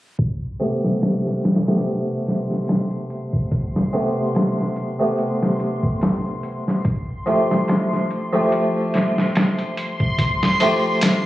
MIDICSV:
0, 0, Header, 1, 4, 480
1, 0, Start_track
1, 0, Key_signature, 0, "minor"
1, 0, Tempo, 833333
1, 110, Time_signature, 4, 2, 24, 8
1, 6485, End_track
2, 0, Start_track
2, 0, Title_t, "Synth texture"
2, 0, Program_c, 0, 99
2, 108, Note_on_c, 0, 84, 80
2, 6485, Note_off_c, 0, 84, 0
2, 6485, End_track
3, 0, Start_track
3, 0, Title_t, "Harpsichord"
3, 0, Program_c, 1, 6
3, 345, Note_on_c, 1, 48, 67
3, 350, Note_on_c, 1, 57, 57
3, 357, Note_on_c, 1, 59, 62
3, 360, Note_on_c, 1, 67, 66
3, 929, Note_off_c, 1, 48, 0
3, 931, Note_off_c, 1, 57, 0
3, 935, Note_off_c, 1, 59, 0
3, 936, Note_off_c, 1, 67, 0
3, 961, Note_on_c, 1, 48, 86
3, 963, Note_on_c, 1, 57, 73
3, 968, Note_on_c, 1, 59, 76
3, 975, Note_on_c, 1, 67, 91
3, 2243, Note_off_c, 1, 48, 0
3, 2244, Note_off_c, 1, 57, 0
3, 2247, Note_off_c, 1, 59, 0
3, 2250, Note_off_c, 1, 67, 0
3, 2265, Note_on_c, 1, 48, 66
3, 2270, Note_on_c, 1, 57, 63
3, 2273, Note_on_c, 1, 59, 63
3, 2280, Note_on_c, 1, 67, 74
3, 2849, Note_off_c, 1, 48, 0
3, 2851, Note_off_c, 1, 57, 0
3, 2853, Note_off_c, 1, 59, 0
3, 2856, Note_off_c, 1, 67, 0
3, 2876, Note_on_c, 1, 48, 82
3, 2878, Note_on_c, 1, 57, 81
3, 2885, Note_on_c, 1, 59, 78
3, 2888, Note_on_c, 1, 67, 90
3, 3933, Note_off_c, 1, 48, 0
3, 3935, Note_off_c, 1, 57, 0
3, 3938, Note_off_c, 1, 59, 0
3, 3939, Note_off_c, 1, 67, 0
3, 4182, Note_on_c, 1, 53, 66
3, 4188, Note_on_c, 1, 57, 65
3, 4192, Note_on_c, 1, 64, 64
3, 4196, Note_on_c, 1, 67, 76
3, 4767, Note_off_c, 1, 53, 0
3, 4770, Note_off_c, 1, 57, 0
3, 4772, Note_off_c, 1, 64, 0
3, 4774, Note_off_c, 1, 67, 0
3, 4796, Note_on_c, 1, 53, 87
3, 4798, Note_on_c, 1, 57, 82
3, 4803, Note_on_c, 1, 64, 79
3, 4810, Note_on_c, 1, 67, 94
3, 6081, Note_off_c, 1, 53, 0
3, 6082, Note_off_c, 1, 57, 0
3, 6084, Note_off_c, 1, 64, 0
3, 6087, Note_off_c, 1, 67, 0
3, 6107, Note_on_c, 1, 53, 70
3, 6110, Note_on_c, 1, 57, 64
3, 6115, Note_on_c, 1, 64, 64
3, 6120, Note_on_c, 1, 67, 76
3, 6485, Note_off_c, 1, 53, 0
3, 6485, Note_off_c, 1, 57, 0
3, 6485, Note_off_c, 1, 64, 0
3, 6485, Note_off_c, 1, 67, 0
3, 6485, End_track
4, 0, Start_track
4, 0, Title_t, "Drums"
4, 108, Note_on_c, 9, 42, 68
4, 109, Note_on_c, 9, 36, 92
4, 166, Note_off_c, 9, 36, 0
4, 166, Note_off_c, 9, 42, 0
4, 346, Note_on_c, 9, 42, 54
4, 404, Note_off_c, 9, 42, 0
4, 486, Note_on_c, 9, 38, 46
4, 543, Note_off_c, 9, 38, 0
4, 586, Note_on_c, 9, 42, 76
4, 593, Note_on_c, 9, 38, 101
4, 643, Note_off_c, 9, 42, 0
4, 651, Note_off_c, 9, 38, 0
4, 727, Note_on_c, 9, 38, 32
4, 785, Note_off_c, 9, 38, 0
4, 828, Note_on_c, 9, 42, 57
4, 835, Note_on_c, 9, 38, 72
4, 886, Note_off_c, 9, 42, 0
4, 892, Note_on_c, 9, 42, 57
4, 893, Note_off_c, 9, 38, 0
4, 900, Note_on_c, 9, 38, 76
4, 950, Note_off_c, 9, 42, 0
4, 957, Note_off_c, 9, 38, 0
4, 962, Note_on_c, 9, 42, 56
4, 969, Note_on_c, 9, 38, 75
4, 1015, Note_off_c, 9, 42, 0
4, 1015, Note_on_c, 9, 42, 57
4, 1022, Note_off_c, 9, 38, 0
4, 1022, Note_on_c, 9, 38, 76
4, 1065, Note_off_c, 9, 42, 0
4, 1065, Note_on_c, 9, 42, 70
4, 1080, Note_off_c, 9, 38, 0
4, 1123, Note_off_c, 9, 42, 0
4, 1307, Note_on_c, 9, 42, 59
4, 1315, Note_on_c, 9, 38, 38
4, 1365, Note_off_c, 9, 42, 0
4, 1372, Note_off_c, 9, 38, 0
4, 1446, Note_on_c, 9, 38, 34
4, 1504, Note_off_c, 9, 38, 0
4, 1543, Note_on_c, 9, 42, 71
4, 1550, Note_on_c, 9, 38, 93
4, 1601, Note_off_c, 9, 42, 0
4, 1608, Note_off_c, 9, 38, 0
4, 1678, Note_on_c, 9, 42, 36
4, 1735, Note_off_c, 9, 42, 0
4, 1787, Note_on_c, 9, 42, 58
4, 1844, Note_off_c, 9, 42, 0
4, 1919, Note_on_c, 9, 36, 86
4, 1976, Note_off_c, 9, 36, 0
4, 2025, Note_on_c, 9, 36, 94
4, 2025, Note_on_c, 9, 42, 78
4, 2082, Note_off_c, 9, 42, 0
4, 2083, Note_off_c, 9, 36, 0
4, 2166, Note_on_c, 9, 38, 46
4, 2224, Note_off_c, 9, 38, 0
4, 2267, Note_on_c, 9, 42, 52
4, 2324, Note_off_c, 9, 42, 0
4, 2506, Note_on_c, 9, 42, 76
4, 2513, Note_on_c, 9, 38, 103
4, 2563, Note_off_c, 9, 42, 0
4, 2571, Note_off_c, 9, 38, 0
4, 2649, Note_on_c, 9, 38, 33
4, 2706, Note_off_c, 9, 38, 0
4, 2743, Note_on_c, 9, 42, 62
4, 2801, Note_off_c, 9, 42, 0
4, 2984, Note_on_c, 9, 42, 75
4, 3041, Note_off_c, 9, 42, 0
4, 3125, Note_on_c, 9, 38, 45
4, 3183, Note_off_c, 9, 38, 0
4, 3224, Note_on_c, 9, 42, 62
4, 3282, Note_off_c, 9, 42, 0
4, 3358, Note_on_c, 9, 36, 91
4, 3416, Note_off_c, 9, 36, 0
4, 3464, Note_on_c, 9, 42, 72
4, 3471, Note_on_c, 9, 38, 95
4, 3521, Note_off_c, 9, 42, 0
4, 3529, Note_off_c, 9, 38, 0
4, 3705, Note_on_c, 9, 42, 60
4, 3763, Note_off_c, 9, 42, 0
4, 3847, Note_on_c, 9, 38, 34
4, 3904, Note_off_c, 9, 38, 0
4, 3944, Note_on_c, 9, 42, 79
4, 3945, Note_on_c, 9, 36, 98
4, 4001, Note_off_c, 9, 42, 0
4, 4003, Note_off_c, 9, 36, 0
4, 4186, Note_on_c, 9, 42, 58
4, 4244, Note_off_c, 9, 42, 0
4, 4327, Note_on_c, 9, 38, 50
4, 4385, Note_off_c, 9, 38, 0
4, 4424, Note_on_c, 9, 42, 80
4, 4432, Note_on_c, 9, 38, 106
4, 4482, Note_off_c, 9, 42, 0
4, 4490, Note_off_c, 9, 38, 0
4, 4569, Note_on_c, 9, 38, 34
4, 4627, Note_off_c, 9, 38, 0
4, 4669, Note_on_c, 9, 42, 65
4, 4727, Note_off_c, 9, 42, 0
4, 4908, Note_on_c, 9, 42, 73
4, 4966, Note_off_c, 9, 42, 0
4, 5149, Note_on_c, 9, 42, 64
4, 5156, Note_on_c, 9, 38, 39
4, 5206, Note_off_c, 9, 42, 0
4, 5214, Note_off_c, 9, 38, 0
4, 5289, Note_on_c, 9, 38, 37
4, 5347, Note_off_c, 9, 38, 0
4, 5388, Note_on_c, 9, 42, 78
4, 5396, Note_on_c, 9, 38, 102
4, 5446, Note_off_c, 9, 42, 0
4, 5453, Note_off_c, 9, 38, 0
4, 5521, Note_on_c, 9, 42, 41
4, 5579, Note_off_c, 9, 42, 0
4, 5630, Note_on_c, 9, 42, 66
4, 5687, Note_off_c, 9, 42, 0
4, 5760, Note_on_c, 9, 36, 89
4, 5817, Note_off_c, 9, 36, 0
4, 5866, Note_on_c, 9, 36, 97
4, 5867, Note_on_c, 9, 42, 76
4, 5924, Note_off_c, 9, 36, 0
4, 5925, Note_off_c, 9, 42, 0
4, 6007, Note_on_c, 9, 38, 48
4, 6064, Note_off_c, 9, 38, 0
4, 6106, Note_on_c, 9, 42, 57
4, 6164, Note_off_c, 9, 42, 0
4, 6344, Note_on_c, 9, 42, 83
4, 6351, Note_on_c, 9, 38, 110
4, 6402, Note_off_c, 9, 42, 0
4, 6409, Note_off_c, 9, 38, 0
4, 6485, End_track
0, 0, End_of_file